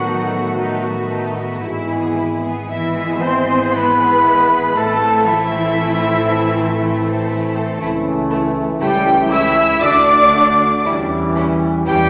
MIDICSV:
0, 0, Header, 1, 10, 480
1, 0, Start_track
1, 0, Tempo, 1043478
1, 753, Time_signature, 3, 2, 24, 8
1, 2191, Tempo, 1015228
1, 5658, End_track
2, 0, Start_track
2, 0, Title_t, "Flute section"
2, 0, Program_c, 0, 73
2, 0, Note_on_c, 0, 78, 68
2, 505, Note_off_c, 0, 78, 0
2, 1232, Note_on_c, 0, 76, 70
2, 1457, Note_off_c, 0, 76, 0
2, 1467, Note_on_c, 0, 84, 79
2, 1704, Note_on_c, 0, 83, 75
2, 1711, Note_off_c, 0, 84, 0
2, 2177, Note_off_c, 0, 83, 0
2, 2192, Note_on_c, 0, 81, 87
2, 2426, Note_on_c, 0, 76, 82
2, 2432, Note_off_c, 0, 81, 0
2, 3368, Note_off_c, 0, 76, 0
2, 4108, Note_on_c, 0, 79, 89
2, 4328, Note_off_c, 0, 79, 0
2, 4344, Note_on_c, 0, 88, 104
2, 4583, Note_off_c, 0, 88, 0
2, 4585, Note_on_c, 0, 86, 107
2, 5072, Note_off_c, 0, 86, 0
2, 5553, Note_on_c, 0, 79, 105
2, 5658, Note_off_c, 0, 79, 0
2, 5658, End_track
3, 0, Start_track
3, 0, Title_t, "Violin section"
3, 0, Program_c, 1, 48
3, 0, Note_on_c, 1, 78, 83
3, 510, Note_off_c, 1, 78, 0
3, 1234, Note_on_c, 1, 76, 82
3, 1459, Note_off_c, 1, 76, 0
3, 1477, Note_on_c, 1, 84, 88
3, 1714, Note_on_c, 1, 83, 84
3, 1716, Note_off_c, 1, 84, 0
3, 2191, Note_off_c, 1, 83, 0
3, 2191, Note_on_c, 1, 81, 100
3, 2426, Note_on_c, 1, 76, 96
3, 2432, Note_off_c, 1, 81, 0
3, 3387, Note_off_c, 1, 76, 0
3, 4110, Note_on_c, 1, 79, 115
3, 4329, Note_off_c, 1, 79, 0
3, 4352, Note_on_c, 1, 88, 127
3, 4587, Note_off_c, 1, 88, 0
3, 4587, Note_on_c, 1, 86, 121
3, 5073, Note_off_c, 1, 86, 0
3, 5547, Note_on_c, 1, 79, 113
3, 5658, Note_off_c, 1, 79, 0
3, 5658, End_track
4, 0, Start_track
4, 0, Title_t, "Clarinet"
4, 0, Program_c, 2, 71
4, 0, Note_on_c, 2, 66, 64
4, 508, Note_off_c, 2, 66, 0
4, 1243, Note_on_c, 2, 64, 64
4, 1481, Note_on_c, 2, 72, 79
4, 1488, Note_off_c, 2, 64, 0
4, 1719, Note_on_c, 2, 71, 66
4, 1726, Note_off_c, 2, 72, 0
4, 2191, Note_off_c, 2, 71, 0
4, 2194, Note_on_c, 2, 69, 77
4, 2434, Note_on_c, 2, 64, 71
4, 2441, Note_off_c, 2, 69, 0
4, 3391, Note_off_c, 2, 64, 0
4, 4117, Note_on_c, 2, 67, 83
4, 4351, Note_on_c, 2, 76, 99
4, 4358, Note_off_c, 2, 67, 0
4, 4574, Note_off_c, 2, 76, 0
4, 4577, Note_on_c, 2, 74, 92
4, 5059, Note_off_c, 2, 74, 0
4, 5556, Note_on_c, 2, 67, 91
4, 5658, Note_off_c, 2, 67, 0
4, 5658, End_track
5, 0, Start_track
5, 0, Title_t, "Viola section"
5, 0, Program_c, 3, 48
5, 0, Note_on_c, 3, 66, 73
5, 489, Note_off_c, 3, 66, 0
5, 1239, Note_on_c, 3, 64, 64
5, 1461, Note_off_c, 3, 64, 0
5, 1479, Note_on_c, 3, 72, 67
5, 1713, Note_on_c, 3, 71, 74
5, 1717, Note_off_c, 3, 72, 0
5, 2191, Note_off_c, 3, 71, 0
5, 2194, Note_on_c, 3, 69, 79
5, 2433, Note_off_c, 3, 69, 0
5, 2436, Note_on_c, 3, 64, 84
5, 3393, Note_off_c, 3, 64, 0
5, 4105, Note_on_c, 3, 67, 84
5, 4326, Note_off_c, 3, 67, 0
5, 4346, Note_on_c, 3, 76, 91
5, 4579, Note_off_c, 3, 76, 0
5, 4583, Note_on_c, 3, 74, 104
5, 5071, Note_off_c, 3, 74, 0
5, 5552, Note_on_c, 3, 67, 92
5, 5658, Note_off_c, 3, 67, 0
5, 5658, End_track
6, 0, Start_track
6, 0, Title_t, "Violin section"
6, 0, Program_c, 4, 48
6, 34, Note_on_c, 4, 57, 49
6, 34, Note_on_c, 4, 63, 47
6, 152, Note_off_c, 4, 57, 0
6, 152, Note_off_c, 4, 63, 0
6, 153, Note_on_c, 4, 66, 46
6, 154, Note_on_c, 4, 59, 44
6, 267, Note_on_c, 4, 57, 52
6, 268, Note_on_c, 4, 63, 54
6, 271, Note_off_c, 4, 59, 0
6, 271, Note_off_c, 4, 66, 0
6, 380, Note_off_c, 4, 57, 0
6, 380, Note_off_c, 4, 63, 0
6, 392, Note_on_c, 4, 66, 46
6, 394, Note_on_c, 4, 59, 44
6, 506, Note_on_c, 4, 63, 51
6, 509, Note_on_c, 4, 57, 49
6, 511, Note_off_c, 4, 66, 0
6, 512, Note_off_c, 4, 59, 0
6, 627, Note_on_c, 4, 66, 47
6, 629, Note_off_c, 4, 63, 0
6, 630, Note_on_c, 4, 59, 49
6, 631, Note_off_c, 4, 57, 0
6, 746, Note_on_c, 4, 64, 55
6, 751, Note_off_c, 4, 64, 0
6, 751, Note_off_c, 4, 66, 0
6, 751, Note_on_c, 4, 64, 53
6, 753, Note_off_c, 4, 59, 0
6, 866, Note_off_c, 4, 64, 0
6, 875, Note_on_c, 4, 68, 48
6, 879, Note_on_c, 4, 59, 50
6, 996, Note_on_c, 4, 64, 50
6, 998, Note_off_c, 4, 68, 0
6, 1000, Note_off_c, 4, 59, 0
6, 1000, Note_off_c, 4, 64, 0
6, 1000, Note_on_c, 4, 64, 53
6, 1115, Note_on_c, 4, 59, 54
6, 1120, Note_on_c, 4, 68, 54
6, 1121, Note_off_c, 4, 64, 0
6, 1237, Note_off_c, 4, 59, 0
6, 1240, Note_off_c, 4, 68, 0
6, 1244, Note_on_c, 4, 64, 50
6, 1245, Note_off_c, 4, 64, 0
6, 1245, Note_on_c, 4, 64, 50
6, 1354, Note_off_c, 4, 64, 0
6, 1364, Note_on_c, 4, 68, 50
6, 1367, Note_on_c, 4, 59, 47
6, 1479, Note_on_c, 4, 64, 52
6, 1481, Note_off_c, 4, 68, 0
6, 1482, Note_off_c, 4, 59, 0
6, 1482, Note_off_c, 4, 64, 0
6, 1482, Note_on_c, 4, 64, 59
6, 1599, Note_off_c, 4, 64, 0
6, 1604, Note_on_c, 4, 59, 52
6, 1607, Note_on_c, 4, 68, 53
6, 1720, Note_off_c, 4, 59, 0
6, 1722, Note_off_c, 4, 68, 0
6, 1725, Note_on_c, 4, 64, 53
6, 1832, Note_off_c, 4, 64, 0
6, 1837, Note_on_c, 4, 59, 48
6, 1838, Note_on_c, 4, 68, 54
6, 1956, Note_off_c, 4, 59, 0
6, 1957, Note_off_c, 4, 68, 0
6, 1957, Note_on_c, 4, 64, 54
6, 1959, Note_off_c, 4, 64, 0
6, 1959, Note_on_c, 4, 64, 53
6, 2073, Note_on_c, 4, 68, 51
6, 2074, Note_on_c, 4, 59, 48
6, 2076, Note_off_c, 4, 64, 0
6, 2188, Note_on_c, 4, 64, 59
6, 2190, Note_on_c, 4, 57, 63
6, 2192, Note_off_c, 4, 59, 0
6, 2192, Note_off_c, 4, 68, 0
6, 2302, Note_off_c, 4, 64, 0
6, 2303, Note_off_c, 4, 57, 0
6, 2316, Note_on_c, 4, 69, 62
6, 2318, Note_on_c, 4, 60, 57
6, 2427, Note_on_c, 4, 57, 56
6, 2428, Note_on_c, 4, 64, 56
6, 2434, Note_off_c, 4, 69, 0
6, 2435, Note_off_c, 4, 60, 0
6, 2548, Note_on_c, 4, 69, 61
6, 2549, Note_off_c, 4, 57, 0
6, 2549, Note_off_c, 4, 64, 0
6, 2550, Note_on_c, 4, 60, 65
6, 2669, Note_off_c, 4, 69, 0
6, 2670, Note_off_c, 4, 60, 0
6, 2676, Note_on_c, 4, 57, 63
6, 2680, Note_on_c, 4, 64, 57
6, 2785, Note_off_c, 4, 57, 0
6, 2787, Note_off_c, 4, 64, 0
6, 2792, Note_on_c, 4, 60, 62
6, 2794, Note_on_c, 4, 69, 56
6, 2911, Note_off_c, 4, 60, 0
6, 2912, Note_off_c, 4, 69, 0
6, 2912, Note_on_c, 4, 64, 64
6, 2914, Note_on_c, 4, 57, 68
6, 3027, Note_on_c, 4, 60, 61
6, 3029, Note_on_c, 4, 69, 57
6, 3031, Note_off_c, 4, 64, 0
6, 3032, Note_off_c, 4, 57, 0
6, 3149, Note_off_c, 4, 60, 0
6, 3150, Note_off_c, 4, 69, 0
6, 3153, Note_on_c, 4, 57, 68
6, 3154, Note_on_c, 4, 64, 56
6, 3264, Note_off_c, 4, 57, 0
6, 3264, Note_off_c, 4, 64, 0
6, 3268, Note_on_c, 4, 60, 59
6, 3268, Note_on_c, 4, 69, 63
6, 3388, Note_on_c, 4, 64, 62
6, 3389, Note_off_c, 4, 60, 0
6, 3389, Note_off_c, 4, 69, 0
6, 3389, Note_on_c, 4, 57, 62
6, 3508, Note_on_c, 4, 60, 56
6, 3510, Note_off_c, 4, 57, 0
6, 3510, Note_off_c, 4, 64, 0
6, 3511, Note_on_c, 4, 69, 57
6, 3626, Note_on_c, 4, 57, 73
6, 3630, Note_off_c, 4, 60, 0
6, 3630, Note_on_c, 4, 64, 73
6, 3631, Note_off_c, 4, 69, 0
6, 3664, Note_off_c, 4, 57, 0
6, 3668, Note_off_c, 4, 64, 0
6, 3867, Note_on_c, 4, 57, 70
6, 3868, Note_on_c, 4, 64, 62
6, 3904, Note_off_c, 4, 57, 0
6, 3906, Note_off_c, 4, 64, 0
6, 4104, Note_on_c, 4, 57, 69
6, 4104, Note_on_c, 4, 64, 71
6, 4141, Note_off_c, 4, 57, 0
6, 4142, Note_off_c, 4, 64, 0
6, 4332, Note_on_c, 4, 57, 73
6, 4333, Note_on_c, 4, 64, 76
6, 4370, Note_off_c, 4, 57, 0
6, 4371, Note_off_c, 4, 64, 0
6, 4584, Note_on_c, 4, 57, 71
6, 4585, Note_on_c, 4, 66, 69
6, 4622, Note_off_c, 4, 57, 0
6, 4623, Note_off_c, 4, 66, 0
6, 4827, Note_on_c, 4, 66, 70
6, 4830, Note_on_c, 4, 57, 65
6, 4865, Note_off_c, 4, 66, 0
6, 4868, Note_off_c, 4, 57, 0
6, 5073, Note_on_c, 4, 61, 74
6, 5073, Note_on_c, 4, 64, 82
6, 5111, Note_off_c, 4, 61, 0
6, 5111, Note_off_c, 4, 64, 0
6, 5311, Note_on_c, 4, 61, 79
6, 5314, Note_on_c, 4, 64, 68
6, 5349, Note_off_c, 4, 61, 0
6, 5352, Note_off_c, 4, 64, 0
6, 5547, Note_on_c, 4, 64, 67
6, 5554, Note_on_c, 4, 61, 68
6, 5585, Note_off_c, 4, 64, 0
6, 5591, Note_off_c, 4, 61, 0
6, 5658, End_track
7, 0, Start_track
7, 0, Title_t, "French horn section"
7, 0, Program_c, 5, 60
7, 0, Note_on_c, 5, 59, 56
7, 0, Note_on_c, 5, 66, 60
7, 737, Note_off_c, 5, 59, 0
7, 757, Note_off_c, 5, 66, 0
7, 759, Note_on_c, 5, 59, 61
7, 761, Note_on_c, 5, 64, 61
7, 1159, Note_off_c, 5, 59, 0
7, 1159, Note_off_c, 5, 64, 0
7, 1237, Note_on_c, 5, 64, 66
7, 1238, Note_on_c, 5, 59, 66
7, 1702, Note_off_c, 5, 59, 0
7, 1706, Note_off_c, 5, 64, 0
7, 1708, Note_on_c, 5, 59, 71
7, 1710, Note_on_c, 5, 64, 71
7, 2179, Note_off_c, 5, 59, 0
7, 2180, Note_off_c, 5, 64, 0
7, 2190, Note_on_c, 5, 64, 73
7, 2192, Note_on_c, 5, 60, 67
7, 3611, Note_off_c, 5, 64, 0
7, 3622, Note_on_c, 5, 61, 79
7, 3628, Note_on_c, 5, 64, 74
7, 3631, Note_off_c, 5, 60, 0
7, 4094, Note_off_c, 5, 61, 0
7, 4097, Note_off_c, 5, 64, 0
7, 4100, Note_on_c, 5, 61, 89
7, 4104, Note_on_c, 5, 64, 78
7, 4570, Note_off_c, 5, 61, 0
7, 4570, Note_on_c, 5, 66, 89
7, 4571, Note_on_c, 5, 62, 89
7, 4572, Note_off_c, 5, 64, 0
7, 4983, Note_off_c, 5, 62, 0
7, 4983, Note_off_c, 5, 66, 0
7, 5064, Note_on_c, 5, 67, 85
7, 5065, Note_on_c, 5, 61, 82
7, 5541, Note_off_c, 5, 67, 0
7, 5542, Note_off_c, 5, 61, 0
7, 5551, Note_on_c, 5, 61, 90
7, 5553, Note_on_c, 5, 67, 92
7, 5658, Note_off_c, 5, 61, 0
7, 5658, Note_off_c, 5, 67, 0
7, 5658, End_track
8, 0, Start_track
8, 0, Title_t, "Cello section"
8, 0, Program_c, 6, 48
8, 0, Note_on_c, 6, 54, 62
8, 510, Note_off_c, 6, 54, 0
8, 1235, Note_on_c, 6, 52, 72
8, 1459, Note_off_c, 6, 52, 0
8, 1476, Note_on_c, 6, 60, 78
8, 1712, Note_on_c, 6, 59, 74
8, 1715, Note_off_c, 6, 60, 0
8, 2184, Note_on_c, 6, 57, 85
8, 2190, Note_off_c, 6, 59, 0
8, 2423, Note_off_c, 6, 57, 0
8, 2430, Note_on_c, 6, 52, 79
8, 3389, Note_off_c, 6, 52, 0
8, 4110, Note_on_c, 6, 55, 101
8, 4329, Note_off_c, 6, 55, 0
8, 4346, Note_on_c, 6, 64, 92
8, 4584, Note_off_c, 6, 64, 0
8, 4586, Note_on_c, 6, 62, 98
8, 5073, Note_off_c, 6, 62, 0
8, 5555, Note_on_c, 6, 55, 103
8, 5658, Note_off_c, 6, 55, 0
8, 5658, End_track
9, 0, Start_track
9, 0, Title_t, "Trombone section"
9, 0, Program_c, 7, 61
9, 0, Note_on_c, 7, 51, 66
9, 0, Note_on_c, 7, 57, 71
9, 736, Note_off_c, 7, 57, 0
9, 737, Note_on_c, 7, 52, 71
9, 738, Note_on_c, 7, 56, 68
9, 754, Note_off_c, 7, 51, 0
9, 1155, Note_off_c, 7, 52, 0
9, 1155, Note_off_c, 7, 56, 0
9, 1234, Note_on_c, 7, 56, 72
9, 1235, Note_on_c, 7, 52, 70
9, 1701, Note_off_c, 7, 56, 0
9, 1704, Note_off_c, 7, 52, 0
9, 1707, Note_on_c, 7, 56, 76
9, 1710, Note_on_c, 7, 52, 69
9, 2178, Note_off_c, 7, 56, 0
9, 2180, Note_off_c, 7, 52, 0
9, 2195, Note_on_c, 7, 52, 75
9, 2196, Note_on_c, 7, 57, 81
9, 3613, Note_off_c, 7, 52, 0
9, 3613, Note_off_c, 7, 57, 0
9, 3627, Note_on_c, 7, 52, 93
9, 3629, Note_on_c, 7, 57, 85
9, 4097, Note_off_c, 7, 52, 0
9, 4097, Note_off_c, 7, 57, 0
9, 4115, Note_on_c, 7, 52, 96
9, 4118, Note_on_c, 7, 57, 91
9, 4502, Note_off_c, 7, 52, 0
9, 4502, Note_off_c, 7, 57, 0
9, 4582, Note_on_c, 7, 57, 94
9, 4585, Note_on_c, 7, 50, 93
9, 5061, Note_off_c, 7, 57, 0
9, 5062, Note_off_c, 7, 50, 0
9, 5071, Note_on_c, 7, 52, 104
9, 5073, Note_on_c, 7, 55, 94
9, 5540, Note_off_c, 7, 52, 0
9, 5543, Note_off_c, 7, 55, 0
9, 5545, Note_on_c, 7, 52, 104
9, 5549, Note_on_c, 7, 55, 97
9, 5658, Note_off_c, 7, 52, 0
9, 5658, Note_off_c, 7, 55, 0
9, 5658, End_track
10, 0, Start_track
10, 0, Title_t, "Double bass section"
10, 0, Program_c, 8, 48
10, 0, Note_on_c, 8, 33, 55
10, 735, Note_off_c, 8, 33, 0
10, 752, Note_on_c, 8, 32, 57
10, 2173, Note_off_c, 8, 32, 0
10, 2191, Note_on_c, 8, 33, 67
10, 3611, Note_off_c, 8, 33, 0
10, 3635, Note_on_c, 8, 37, 78
10, 4054, Note_off_c, 8, 37, 0
10, 4106, Note_on_c, 8, 37, 89
10, 4526, Note_off_c, 8, 37, 0
10, 4580, Note_on_c, 8, 38, 107
10, 5012, Note_off_c, 8, 38, 0
10, 5075, Note_on_c, 8, 40, 84
10, 5499, Note_off_c, 8, 40, 0
10, 5556, Note_on_c, 8, 40, 98
10, 5658, Note_off_c, 8, 40, 0
10, 5658, End_track
0, 0, End_of_file